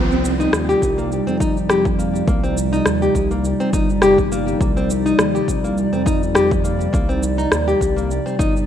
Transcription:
Already playing: C2 C3 F3 G3 D#4 F4 D5
0.11 C4, shaker
0.25 shaker
0.40 D#4, shaker
0.53 D#2, cross-stick, shaker
0.69 G4, shaker
0.82 C2, kick, shaker
0.98 A#3, shaker
1.12 shaker
1.27 F2 C4, shaker
1.40 D#4, kick, shaker
1.57 shaker
1.69 G4, cross-stick, shaker
1.85 kick, shaker
1.99 A#3, shaker
2.16 shaker
2.27 C2 A#3, kick, shaker
2.44 C4, shaker
2.57 shaker
2.73 D#4, shaker
2.86 D#2, cross-stick, shaker
3.02 G4, shaker
3.15 C2, kick, shaker
3.31 A#3, shaker
3.45 shaker
3.60 C4, shaker
3.73 G1 D#4, kick, shaker
3.90 shaker
4.02 G4, cross-stick, shaker
4.18 kick, shaker
4.32 A#3, shaker
4.48 shaker
4.61 C2 A#3, kick, shaker
4.77 C4, shaker
4.90 shaker
5.06 D#4, shaker
5.19 D#2, cross-stick, shaker
5.35 G4, shaker
5.48 C2, kick, shaker
5.64 A#3, shaker
5.78 shaker
5.93 F2 C4, shaker
6.06 D#4, kick, shaker
6.23 shaker
6.35 G4, cross-stick, shaker
6.51 kick, shaker
6.64 A#3, shaker
6.81 shaker
6.93 C2 A#3, kick, shaker
7.09 C4, shaker
7.23 shaker
7.38 D#4, shaker
7.52 D#2, cross-stick, shaker
7.68 G4, shaker
7.81 C2, kick, shaker
7.97 A#3, shaker
8.11 shaker
8.26 C4, shaker
8.39 G1 D#4, kick, shaker
8.57 shaker

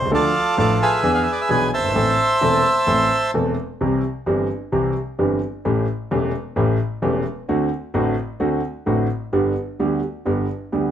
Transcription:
Already playing: C5
0.00 C2
0.05 C#2
0.11 D2 D3 F3 A3 D4 F4 A4 D5
0.57 A1 A2 F3 A3 D4 A4 D5
0.82 G#4 B4 E5
1.03 E2 E3 B3 D4 G#4
1.14 F5
1.23 E5
1.32 D5
1.41 E5
1.49 B1 B2 E3 B3 D4 G#4 G#5
1.74 F#1 C5 E5 A5
1.83 G1
1.89 G#1
1.95 A1 A2 E3 A3 C4 A4
2.41 E1 E2 E3 A3 C4 A4
2.87 A1 A2 E3 A3 C4 A4
3.34 E1 E2 E3 A3 C4 A4
3.81 C2 C3 E3 G3 C4 G4
4.26 G1 G2 E3 G3 C4 G4
4.72 C2 C3 E3 G3 C4 G4
5.19 G1 G2 E3 G3 C4 G4
5.65 A1 A2 E3 A3 C#4 G4
6.11 E1 E2 E3 A3 C#4 G4
6.56 A1 A2 E3 A3 C#4 G4
7.02 E1 E2 E3 A3 C#4 G4
7.49 D2 D3 A3 C4 F#4
7.94 A1 A2 D3 A3 C4 F#4
8.40 D2 D3 A3 C4 F#4
8.86 A1 A2 D3 A3 C4 F#4
9.33 G1 G2 D3 G3 B3 G4
9.79 D2 D3 G3 B3 G4
10.25 G1 G2 D3 G3 B3 G4
10.72 D2 D3 G3 B3 G4

